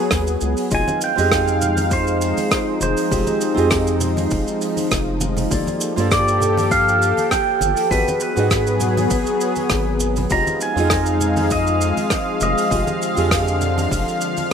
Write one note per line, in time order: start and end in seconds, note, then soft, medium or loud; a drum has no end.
0.00 0.69 F#3 medium
0.00 0.67 B3 medium
0.00 0.69 B3 medium
0.00 0.68 F#4 medium
0.00 0.68 G#4 medium
0.00 0.69 G#4 medium
0.00 0.69 A#4 medium
0.00 0.69 D#5 loud
0.11 0.37 D#2 medium
0.11 kick loud
0.11 cross-stick loud
0.11 open hi-hat medium
0.11 shaker medium
0.27 shaker soft
0.41 0.55 C#2 loud
0.41 shaker medium
0.57 open hi-hat medium
0.57 shaker medium
0.70 0.85 F1 loud
0.70 7.87 F3 medium
0.70 5.47 G#3 medium
0.70 1.13 C4 medium
0.70 5.47 D#4 medium
0.70 1.14 D#4 medium
0.70 1.14 F4 medium
0.70 1.14 G#4 medium
0.70 1.14 D#5 medium
0.70 3.08 F5 medium
0.70 kick loud
0.70 open hi-hat medium
0.70 shaker medium
0.75 1.04 G#5 loud
0.88 high conga loud
0.88 shaker soft
1.01 1.95 G5 loud
1.01 open hi-hat soft
1.01 shaker medium
1.16 2.34 F2 medium
1.16 3.07 C4 medium
1.16 3.07 F4 medium
1.16 3.08 G4 medium
1.16 3.08 G#4 medium
1.16 3.09 D#5 loud
1.16 open hi-hat medium
1.16 shaker medium
1.31 kick loud
1.31 cross-stick medium
1.31 open hi-hat medium
1.31 high conga medium
1.31 shaker medium
1.48 shaker soft
1.61 low conga medium
1.61 shaker medium
1.77 open hi-hat medium
1.77 high conga medium
1.77 shaker medium
1.91 2.81 C5 medium
1.91 kick loud
1.91 open hi-hat medium
1.91 shaker medium
2.07 shaker soft
2.21 open hi-hat soft
2.21 shaker medium
2.37 open hi-hat medium
2.37 high conga medium
2.37 shaker soft
2.51 kick loud
2.51 cross-stick loud
2.51 open hi-hat medium
2.51 shaker medium
2.81 2.95 F1 medium
2.81 4.58 C5 medium
2.81 high conga medium
2.81 shaker medium
2.97 open hi-hat medium
2.97 shaker soft
3.10 3.25 F1 loud
3.10 3.53 C4 medium
3.10 3.53 F4 medium
3.10 3.54 G4 medium
3.10 3.54 G#4 medium
3.10 3.54 D#5 medium
3.10 kick loud
3.10 open hi-hat medium
3.10 shaker medium
3.27 high conga loud
3.27 shaker soft
3.41 open hi-hat soft
3.41 shaker medium
3.54 4.28 F2 medium
3.54 5.46 C4 medium
3.54 5.47 F4 medium
3.54 5.47 G4 medium
3.54 5.48 G#4 medium
3.54 open hi-hat medium
3.54 shaker soft
3.59 5.48 D#5 loud
3.71 kick loud
3.71 cross-stick loud
3.71 open hi-hat medium
3.71 high conga medium
3.71 shaker medium
3.87 shaker medium
4.00 open hi-hat soft
4.00 low conga medium
4.00 shaker medium
4.17 open hi-hat medium
4.17 high conga medium
4.17 shaker soft
4.31 4.45 F1 medium
4.31 kick loud
4.31 open hi-hat medium
4.31 shaker medium
4.48 shaker soft
4.61 open hi-hat soft
4.61 shaker medium
4.77 open hi-hat medium
4.77 high conga medium
4.77 shaker medium
4.91 5.48 F1 medium
4.91 kick loud
4.91 cross-stick loud
4.91 open hi-hat medium
4.91 shaker medium
5.21 high conga loud
5.21 shaker medium
5.37 open hi-hat medium
5.37 low conga medium
5.37 shaker medium
5.50 5.65 G1 loud
5.50 5.93 A#3 medium
5.50 5.94 F4 medium
5.50 7.88 G4 medium
5.50 5.94 G4 medium
5.50 7.88 A4 medium
5.50 5.94 A4 medium
5.50 5.94 D5 medium
5.50 kick loud
5.50 open hi-hat medium
5.50 shaker medium
5.67 high conga loud
5.67 shaker soft
5.80 open hi-hat soft
5.80 shaker medium
5.96 7.13 G2 medium
5.96 7.87 A#3 medium
5.96 7.87 F4 medium
5.96 7.88 G4 medium
5.96 7.89 A4 medium
5.96 7.89 D5 loud
5.96 open hi-hat medium
5.96 shaker medium
6.11 6.74 D5 medium
6.11 kick loud
6.11 cross-stick loud
6.11 open hi-hat medium
6.11 high conga medium
6.11 shaker medium
6.28 shaker medium
6.40 low conga medium
6.40 shaker medium
6.57 open hi-hat medium
6.57 high conga loud
6.57 shaker medium
6.71 7.31 F5 loud
6.71 kick loud
6.71 open hi-hat medium
6.71 shaker medium
6.89 shaker soft
7.01 open hi-hat soft
7.01 shaker medium
7.17 open hi-hat medium
7.17 high conga medium
7.17 shaker soft
7.31 7.93 G5 loud
7.31 kick loud
7.31 cross-stick medium
7.31 open hi-hat medium
7.31 shaker medium
7.61 7.75 G1 medium
7.61 high conga medium
7.61 shaker medium
7.77 open hi-hat medium
7.77 shaker medium
7.90 8.05 G#1 loud
7.90 10.28 F#3 medium
7.90 8.33 B3 medium
7.90 10.28 B3 medium
7.90 8.33 F#4 medium
7.90 10.29 G#4 loud
7.90 8.34 G#4 medium
7.90 8.21 B4 loud
7.90 8.34 B4 medium
7.90 8.34 D#5 medium
7.90 kick loud
7.90 open hi-hat medium
7.90 shaker medium
8.08 high conga loud
8.08 shaker medium
8.20 9.98 B4 medium
8.20 open hi-hat soft
8.20 shaker medium
8.36 9.07 G#2 medium
8.36 10.27 B3 medium
8.36 10.27 F#4 medium
8.36 10.28 G#4 medium
8.36 10.28 B4 medium
8.36 10.29 D#5 loud
8.36 open hi-hat medium
8.36 shaker soft
8.50 kick loud
8.50 cross-stick medium
8.50 open hi-hat medium
8.50 high conga medium
8.50 shaker medium
8.67 shaker soft
8.80 open hi-hat soft
8.80 low conga medium
8.80 shaker medium
8.97 open hi-hat medium
8.97 high conga loud
8.97 shaker medium
9.10 9.25 G#1 medium
9.10 kick loud
9.10 open hi-hat medium
9.10 shaker medium
9.26 shaker medium
9.40 open hi-hat soft
9.40 shaker medium
9.56 open hi-hat soft
9.56 high conga medium
9.56 shaker soft
9.69 10.27 G#1 medium
9.69 kick loud
9.69 cross-stick loud
9.69 open hi-hat medium
9.69 shaker medium
10.00 high conga medium
10.00 shaker medium
10.16 open hi-hat medium
10.16 low conga medium
10.16 shaker medium
10.30 10.45 F1 loud
10.30 14.53 F3 medium
10.30 14.53 G#3 medium
10.30 10.73 C4 medium
10.30 12.68 D#4 medium
10.30 10.73 F4 medium
10.30 10.74 G4 medium
10.30 10.74 G#4 medium
10.30 10.74 D#5 medium
10.30 14.53 F5 medium
10.30 10.62 A#5 loud
10.30 kick loud
10.30 open hi-hat medium
10.30 shaker medium
10.47 high conga loud
10.47 shaker soft
10.61 11.55 G#5 loud
10.61 open hi-hat soft
10.61 shaker medium
10.76 11.93 F2 medium
10.76 12.67 C4 medium
10.76 12.68 D#4 medium
10.76 12.68 F4 medium
10.76 12.68 G#4 medium
10.76 open hi-hat medium
10.76 shaker medium
10.80 12.69 D#5 loud
10.90 kick loud
10.90 cross-stick loud
10.90 open hi-hat medium
10.90 high conga medium
10.90 shaker medium
11.06 shaker soft
11.21 low conga medium
11.21 shaker medium
11.36 open hi-hat medium
11.36 high conga loud
11.36 shaker soft
11.50 12.42 D#5 loud
11.50 kick loud
11.50 open hi-hat medium
11.50 shaker medium
11.67 shaker soft
11.81 open hi-hat soft
11.81 shaker medium
11.97 open hi-hat medium
11.97 high conga medium
11.97 shaker soft
12.10 kick loud
12.10 cross-stick medium
12.10 open hi-hat medium
12.10 shaker medium
12.41 12.55 F1 medium
12.41 14.18 D#5 medium
12.41 high conga medium
12.41 shaker medium
12.58 open hi-hat medium
12.58 shaker medium
12.70 12.85 F1 loud
12.70 14.53 D3 medium
12.70 13.13 C4 medium
12.70 13.14 F4 medium
12.70 13.14 G4 medium
12.70 13.14 G#4 medium
12.70 13.14 D#5 medium
12.70 kick loud
12.70 open hi-hat medium
12.70 shaker medium
12.87 high conga loud
12.87 shaker soft
13.01 open hi-hat soft
13.01 shaker medium
13.15 13.88 F2 medium
13.15 14.53 C4 medium
13.15 14.53 F4 medium
13.15 14.53 G4 medium
13.15 14.53 G#4 medium
13.15 open hi-hat medium
13.15 shaker soft
13.19 14.53 D#5 loud
13.31 kick loud
13.31 cross-stick loud
13.31 open hi-hat medium
13.31 high conga medium
13.31 shaker medium
13.48 shaker soft
13.61 open hi-hat soft
13.61 low conga medium
13.61 shaker medium
13.78 open hi-hat medium
13.78 high conga medium
13.78 shaker medium
13.91 14.05 F1 loud
13.91 kick loud
13.91 open hi-hat medium
13.91 shaker medium
14.08 shaker soft
14.21 open hi-hat soft
14.21 shaker medium
14.36 open hi-hat medium
14.36 high conga medium
14.36 shaker soft